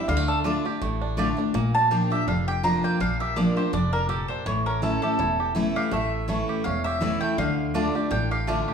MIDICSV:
0, 0, Header, 1, 6, 480
1, 0, Start_track
1, 0, Tempo, 364964
1, 109, Time_signature, 4, 2, 24, 8
1, 11492, End_track
2, 0, Start_track
2, 0, Title_t, "Mandolin"
2, 0, Program_c, 0, 25
2, 112, Note_on_c, 0, 77, 92
2, 366, Note_off_c, 0, 77, 0
2, 369, Note_on_c, 0, 69, 90
2, 500, Note_off_c, 0, 69, 0
2, 2295, Note_on_c, 0, 81, 102
2, 2504, Note_off_c, 0, 81, 0
2, 2512, Note_on_c, 0, 79, 73
2, 2766, Note_off_c, 0, 79, 0
2, 2783, Note_on_c, 0, 76, 84
2, 2989, Note_off_c, 0, 76, 0
2, 2995, Note_on_c, 0, 77, 77
2, 3248, Note_off_c, 0, 77, 0
2, 3258, Note_on_c, 0, 79, 98
2, 3466, Note_off_c, 0, 79, 0
2, 3472, Note_on_c, 0, 82, 101
2, 3726, Note_off_c, 0, 82, 0
2, 3738, Note_on_c, 0, 79, 92
2, 3946, Note_off_c, 0, 79, 0
2, 3957, Note_on_c, 0, 77, 86
2, 4207, Note_off_c, 0, 77, 0
2, 4212, Note_on_c, 0, 76, 88
2, 4420, Note_on_c, 0, 74, 75
2, 4423, Note_off_c, 0, 76, 0
2, 4680, Note_off_c, 0, 74, 0
2, 4691, Note_on_c, 0, 72, 84
2, 4902, Note_off_c, 0, 72, 0
2, 4912, Note_on_c, 0, 74, 97
2, 5159, Note_off_c, 0, 74, 0
2, 5164, Note_on_c, 0, 70, 102
2, 5371, Note_off_c, 0, 70, 0
2, 5377, Note_on_c, 0, 69, 79
2, 5627, Note_off_c, 0, 69, 0
2, 5632, Note_on_c, 0, 72, 85
2, 5853, Note_off_c, 0, 72, 0
2, 5867, Note_on_c, 0, 73, 84
2, 6124, Note_off_c, 0, 73, 0
2, 6130, Note_on_c, 0, 70, 91
2, 6342, Note_off_c, 0, 70, 0
2, 6351, Note_on_c, 0, 69, 69
2, 6586, Note_off_c, 0, 69, 0
2, 6602, Note_on_c, 0, 69, 87
2, 7255, Note_off_c, 0, 69, 0
2, 7577, Note_on_c, 0, 77, 90
2, 7785, Note_off_c, 0, 77, 0
2, 7806, Note_on_c, 0, 76, 84
2, 8245, Note_off_c, 0, 76, 0
2, 8264, Note_on_c, 0, 73, 51
2, 8713, Note_off_c, 0, 73, 0
2, 8734, Note_on_c, 0, 77, 99
2, 8994, Note_off_c, 0, 77, 0
2, 8999, Note_on_c, 0, 76, 100
2, 9452, Note_off_c, 0, 76, 0
2, 9478, Note_on_c, 0, 79, 99
2, 9696, Note_off_c, 0, 79, 0
2, 9710, Note_on_c, 0, 77, 80
2, 10156, Note_off_c, 0, 77, 0
2, 10196, Note_on_c, 0, 74, 63
2, 10640, Note_off_c, 0, 74, 0
2, 10670, Note_on_c, 0, 79, 102
2, 10925, Note_off_c, 0, 79, 0
2, 10933, Note_on_c, 0, 77, 91
2, 11379, Note_off_c, 0, 77, 0
2, 11492, End_track
3, 0, Start_track
3, 0, Title_t, "Mandolin"
3, 0, Program_c, 1, 25
3, 577, Note_on_c, 1, 57, 80
3, 580, Note_on_c, 1, 65, 86
3, 584, Note_on_c, 1, 74, 92
3, 590, Note_on_c, 1, 81, 95
3, 713, Note_off_c, 1, 57, 0
3, 715, Note_off_c, 1, 65, 0
3, 717, Note_off_c, 1, 74, 0
3, 720, Note_off_c, 1, 81, 0
3, 1541, Note_on_c, 1, 57, 89
3, 1547, Note_on_c, 1, 65, 77
3, 1553, Note_on_c, 1, 74, 88
3, 1556, Note_on_c, 1, 81, 100
3, 1676, Note_off_c, 1, 57, 0
3, 1678, Note_off_c, 1, 65, 0
3, 1681, Note_off_c, 1, 74, 0
3, 1683, Note_off_c, 1, 81, 0
3, 10180, Note_on_c, 1, 57, 80
3, 10183, Note_on_c, 1, 65, 91
3, 10188, Note_on_c, 1, 74, 85
3, 10196, Note_on_c, 1, 81, 84
3, 10315, Note_off_c, 1, 57, 0
3, 10317, Note_off_c, 1, 65, 0
3, 10319, Note_off_c, 1, 74, 0
3, 10323, Note_off_c, 1, 81, 0
3, 11140, Note_on_c, 1, 57, 91
3, 11146, Note_on_c, 1, 65, 84
3, 11152, Note_on_c, 1, 74, 101
3, 11156, Note_on_c, 1, 81, 90
3, 11275, Note_off_c, 1, 57, 0
3, 11278, Note_off_c, 1, 65, 0
3, 11281, Note_off_c, 1, 74, 0
3, 11283, Note_off_c, 1, 81, 0
3, 11492, End_track
4, 0, Start_track
4, 0, Title_t, "Five-string banjo"
4, 0, Program_c, 2, 105
4, 106, Note_on_c, 2, 55, 83
4, 219, Note_off_c, 2, 55, 0
4, 219, Note_on_c, 2, 57, 81
4, 375, Note_on_c, 2, 62, 58
4, 580, Note_off_c, 2, 62, 0
4, 591, Note_off_c, 2, 57, 0
4, 595, Note_on_c, 2, 62, 56
4, 864, Note_on_c, 2, 67, 59
4, 1072, Note_on_c, 2, 57, 68
4, 1283, Note_off_c, 2, 62, 0
4, 1335, Note_on_c, 2, 62, 59
4, 1512, Note_off_c, 2, 67, 0
4, 1559, Note_on_c, 2, 67, 54
4, 1761, Note_off_c, 2, 57, 0
4, 1802, Note_off_c, 2, 62, 0
4, 1817, Note_on_c, 2, 62, 56
4, 2032, Note_off_c, 2, 62, 0
4, 2034, Note_off_c, 2, 67, 0
4, 2035, Note_on_c, 2, 58, 81
4, 2302, Note_on_c, 2, 62, 53
4, 2515, Note_off_c, 2, 58, 0
4, 2520, Note_on_c, 2, 58, 57
4, 2783, Note_on_c, 2, 67, 57
4, 3000, Note_off_c, 2, 62, 0
4, 3000, Note_on_c, 2, 62, 66
4, 3206, Note_off_c, 2, 58, 0
4, 3247, Note_off_c, 2, 67, 0
4, 3262, Note_on_c, 2, 67, 62
4, 3464, Note_off_c, 2, 62, 0
4, 3480, Note_on_c, 2, 62, 54
4, 3737, Note_on_c, 2, 58, 58
4, 3911, Note_off_c, 2, 67, 0
4, 3943, Note_off_c, 2, 62, 0
4, 3958, Note_on_c, 2, 62, 69
4, 4224, Note_on_c, 2, 67, 58
4, 4389, Note_off_c, 2, 58, 0
4, 4420, Note_off_c, 2, 62, 0
4, 4435, Note_on_c, 2, 62, 54
4, 4683, Note_off_c, 2, 67, 0
4, 4699, Note_on_c, 2, 67, 55
4, 4895, Note_off_c, 2, 62, 0
4, 4911, Note_on_c, 2, 62, 68
4, 5169, Note_on_c, 2, 58, 63
4, 5349, Note_off_c, 2, 67, 0
4, 5387, Note_on_c, 2, 67, 62
4, 5601, Note_off_c, 2, 62, 0
4, 5653, Note_on_c, 2, 62, 57
4, 5824, Note_off_c, 2, 58, 0
4, 5869, Note_off_c, 2, 67, 0
4, 5869, Note_on_c, 2, 52, 70
4, 5870, Note_off_c, 2, 62, 0
4, 6136, Note_on_c, 2, 61, 56
4, 6353, Note_on_c, 2, 64, 59
4, 6618, Note_on_c, 2, 67, 62
4, 6817, Note_off_c, 2, 64, 0
4, 6833, Note_on_c, 2, 64, 61
4, 7084, Note_off_c, 2, 67, 0
4, 7099, Note_on_c, 2, 67, 56
4, 7139, Note_off_c, 2, 61, 0
4, 7293, Note_off_c, 2, 64, 0
4, 7309, Note_on_c, 2, 64, 54
4, 7564, Note_off_c, 2, 67, 0
4, 7579, Note_on_c, 2, 67, 62
4, 7710, Note_off_c, 2, 52, 0
4, 7792, Note_on_c, 2, 57, 84
4, 8000, Note_off_c, 2, 64, 0
4, 8230, Note_off_c, 2, 67, 0
4, 8269, Note_off_c, 2, 57, 0
4, 8275, Note_on_c, 2, 57, 60
4, 8536, Note_on_c, 2, 67, 60
4, 8759, Note_on_c, 2, 61, 65
4, 9005, Note_off_c, 2, 67, 0
4, 9021, Note_on_c, 2, 67, 62
4, 9060, Note_off_c, 2, 57, 0
4, 9236, Note_on_c, 2, 64, 55
4, 9445, Note_off_c, 2, 61, 0
4, 9500, Note_on_c, 2, 57, 59
4, 9670, Note_off_c, 2, 67, 0
4, 9713, Note_off_c, 2, 64, 0
4, 9714, Note_on_c, 2, 50, 68
4, 10191, Note_on_c, 2, 62, 57
4, 10458, Note_on_c, 2, 67, 60
4, 10498, Note_off_c, 2, 57, 0
4, 10654, Note_off_c, 2, 62, 0
4, 10670, Note_on_c, 2, 62, 63
4, 10918, Note_off_c, 2, 67, 0
4, 10933, Note_on_c, 2, 67, 63
4, 11141, Note_off_c, 2, 62, 0
4, 11156, Note_on_c, 2, 62, 58
4, 11402, Note_off_c, 2, 67, 0
4, 11418, Note_on_c, 2, 67, 61
4, 11492, Note_off_c, 2, 50, 0
4, 11492, Note_off_c, 2, 62, 0
4, 11492, Note_off_c, 2, 67, 0
4, 11492, End_track
5, 0, Start_track
5, 0, Title_t, "Steel-string acoustic guitar"
5, 0, Program_c, 3, 25
5, 115, Note_on_c, 3, 50, 104
5, 568, Note_off_c, 3, 50, 0
5, 584, Note_on_c, 3, 50, 91
5, 594, Note_on_c, 3, 57, 87
5, 602, Note_on_c, 3, 62, 91
5, 609, Note_on_c, 3, 65, 104
5, 839, Note_off_c, 3, 50, 0
5, 839, Note_off_c, 3, 65, 0
5, 844, Note_off_c, 3, 57, 0
5, 848, Note_off_c, 3, 62, 0
5, 855, Note_on_c, 3, 65, 56
5, 880, Note_on_c, 3, 62, 43
5, 1062, Note_off_c, 3, 65, 0
5, 1072, Note_on_c, 3, 45, 85
5, 1074, Note_off_c, 3, 62, 0
5, 1538, Note_on_c, 3, 50, 82
5, 1549, Note_on_c, 3, 57, 93
5, 1557, Note_on_c, 3, 62, 92
5, 1565, Note_on_c, 3, 65, 97
5, 1782, Note_off_c, 3, 65, 0
5, 1796, Note_off_c, 3, 50, 0
5, 1797, Note_on_c, 3, 65, 58
5, 1802, Note_off_c, 3, 57, 0
5, 1806, Note_off_c, 3, 62, 0
5, 1824, Note_on_c, 3, 62, 49
5, 1988, Note_off_c, 3, 45, 0
5, 2013, Note_off_c, 3, 65, 0
5, 2026, Note_off_c, 3, 62, 0
5, 2027, Note_on_c, 3, 46, 97
5, 2510, Note_on_c, 3, 53, 86
5, 2515, Note_on_c, 3, 58, 93
5, 2525, Note_on_c, 3, 62, 96
5, 2532, Note_on_c, 3, 65, 89
5, 2751, Note_off_c, 3, 65, 0
5, 2762, Note_off_c, 3, 53, 0
5, 2765, Note_off_c, 3, 58, 0
5, 2766, Note_on_c, 3, 65, 61
5, 2770, Note_off_c, 3, 62, 0
5, 2796, Note_on_c, 3, 62, 49
5, 2945, Note_off_c, 3, 46, 0
5, 2978, Note_off_c, 3, 65, 0
5, 2992, Note_off_c, 3, 62, 0
5, 2995, Note_on_c, 3, 41, 79
5, 3465, Note_on_c, 3, 53, 93
5, 3472, Note_on_c, 3, 58, 90
5, 3478, Note_on_c, 3, 62, 81
5, 3486, Note_on_c, 3, 65, 97
5, 3909, Note_off_c, 3, 41, 0
5, 3925, Note_off_c, 3, 53, 0
5, 3929, Note_off_c, 3, 58, 0
5, 3932, Note_off_c, 3, 62, 0
5, 3936, Note_off_c, 3, 65, 0
5, 3950, Note_on_c, 3, 46, 97
5, 4423, Note_on_c, 3, 53, 93
5, 4430, Note_on_c, 3, 58, 88
5, 4437, Note_on_c, 3, 62, 91
5, 4444, Note_on_c, 3, 65, 101
5, 4668, Note_off_c, 3, 65, 0
5, 4679, Note_off_c, 3, 53, 0
5, 4683, Note_off_c, 3, 58, 0
5, 4683, Note_on_c, 3, 65, 59
5, 4686, Note_off_c, 3, 62, 0
5, 4709, Note_on_c, 3, 62, 51
5, 4867, Note_off_c, 3, 46, 0
5, 4896, Note_off_c, 3, 65, 0
5, 4905, Note_on_c, 3, 41, 90
5, 4909, Note_off_c, 3, 62, 0
5, 5366, Note_off_c, 3, 41, 0
5, 5378, Note_on_c, 3, 46, 85
5, 5842, Note_off_c, 3, 46, 0
5, 5866, Note_on_c, 3, 45, 106
5, 6339, Note_on_c, 3, 52, 83
5, 6348, Note_on_c, 3, 57, 90
5, 6358, Note_on_c, 3, 61, 98
5, 6364, Note_on_c, 3, 64, 85
5, 6588, Note_off_c, 3, 64, 0
5, 6597, Note_off_c, 3, 52, 0
5, 6602, Note_off_c, 3, 57, 0
5, 6604, Note_on_c, 3, 64, 56
5, 6607, Note_off_c, 3, 61, 0
5, 6630, Note_on_c, 3, 61, 56
5, 6785, Note_off_c, 3, 45, 0
5, 6817, Note_off_c, 3, 64, 0
5, 6823, Note_on_c, 3, 40, 87
5, 6829, Note_off_c, 3, 61, 0
5, 7296, Note_on_c, 3, 52, 96
5, 7308, Note_on_c, 3, 57, 93
5, 7313, Note_on_c, 3, 61, 91
5, 7322, Note_on_c, 3, 64, 109
5, 7743, Note_off_c, 3, 40, 0
5, 7761, Note_off_c, 3, 52, 0
5, 7767, Note_off_c, 3, 57, 0
5, 7770, Note_off_c, 3, 61, 0
5, 7775, Note_off_c, 3, 64, 0
5, 7778, Note_on_c, 3, 45, 102
5, 8256, Note_on_c, 3, 52, 87
5, 8267, Note_on_c, 3, 57, 88
5, 8272, Note_on_c, 3, 61, 94
5, 8281, Note_on_c, 3, 64, 94
5, 8701, Note_off_c, 3, 45, 0
5, 8721, Note_off_c, 3, 52, 0
5, 8727, Note_off_c, 3, 57, 0
5, 8729, Note_off_c, 3, 61, 0
5, 8734, Note_off_c, 3, 64, 0
5, 8742, Note_on_c, 3, 40, 85
5, 9214, Note_on_c, 3, 52, 84
5, 9222, Note_on_c, 3, 57, 93
5, 9229, Note_on_c, 3, 61, 96
5, 9239, Note_on_c, 3, 64, 95
5, 9662, Note_off_c, 3, 40, 0
5, 9680, Note_off_c, 3, 52, 0
5, 9684, Note_off_c, 3, 57, 0
5, 9688, Note_off_c, 3, 61, 0
5, 9693, Note_off_c, 3, 64, 0
5, 9709, Note_on_c, 3, 50, 99
5, 10170, Note_off_c, 3, 50, 0
5, 10186, Note_on_c, 3, 50, 92
5, 10191, Note_on_c, 3, 57, 94
5, 10199, Note_on_c, 3, 62, 96
5, 10203, Note_on_c, 3, 65, 97
5, 10436, Note_off_c, 3, 65, 0
5, 10440, Note_off_c, 3, 50, 0
5, 10443, Note_off_c, 3, 57, 0
5, 10447, Note_off_c, 3, 62, 0
5, 10452, Note_on_c, 3, 65, 61
5, 10475, Note_on_c, 3, 62, 49
5, 10660, Note_off_c, 3, 65, 0
5, 10660, Note_on_c, 3, 45, 90
5, 10672, Note_off_c, 3, 62, 0
5, 11145, Note_on_c, 3, 50, 84
5, 11155, Note_on_c, 3, 57, 92
5, 11160, Note_on_c, 3, 62, 93
5, 11165, Note_on_c, 3, 65, 92
5, 11492, Note_off_c, 3, 45, 0
5, 11492, Note_off_c, 3, 50, 0
5, 11492, Note_off_c, 3, 57, 0
5, 11492, Note_off_c, 3, 62, 0
5, 11492, Note_off_c, 3, 65, 0
5, 11492, End_track
6, 0, Start_track
6, 0, Title_t, "Upright bass"
6, 0, Program_c, 4, 32
6, 105, Note_on_c, 4, 38, 89
6, 765, Note_off_c, 4, 38, 0
6, 1071, Note_on_c, 4, 33, 88
6, 1729, Note_off_c, 4, 33, 0
6, 2025, Note_on_c, 4, 34, 96
6, 2685, Note_off_c, 4, 34, 0
6, 2981, Note_on_c, 4, 29, 92
6, 3642, Note_off_c, 4, 29, 0
6, 3945, Note_on_c, 4, 34, 82
6, 4605, Note_off_c, 4, 34, 0
6, 4907, Note_on_c, 4, 29, 88
6, 5566, Note_off_c, 4, 29, 0
6, 5864, Note_on_c, 4, 33, 91
6, 6524, Note_off_c, 4, 33, 0
6, 6825, Note_on_c, 4, 28, 90
6, 7485, Note_off_c, 4, 28, 0
6, 7783, Note_on_c, 4, 33, 93
6, 8444, Note_off_c, 4, 33, 0
6, 8746, Note_on_c, 4, 28, 84
6, 9406, Note_off_c, 4, 28, 0
6, 9705, Note_on_c, 4, 38, 96
6, 10365, Note_off_c, 4, 38, 0
6, 10667, Note_on_c, 4, 33, 97
6, 11326, Note_off_c, 4, 33, 0
6, 11492, End_track
0, 0, End_of_file